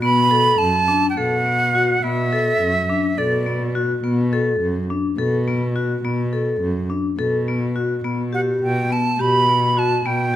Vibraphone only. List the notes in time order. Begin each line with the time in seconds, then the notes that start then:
0.02 B3
0.31 A4
0.88 D4
1.17 A4
1.46 B3
1.75 F#4
2.04 B3
2.32 A4
2.90 D4
3.18 A4
3.46 B3
3.75 F#4
4.04 B3
4.33 A4
4.90 D4
5.18 A4
5.48 B3
5.76 F#4
6.05 B3
6.33 A4
6.90 D4
7.19 A4
7.48 B3
7.76 F#4
8.04 B3
8.33 G4
8.91 B3
9.19 G4
9.48 B3
9.77 F#4
10.06 B3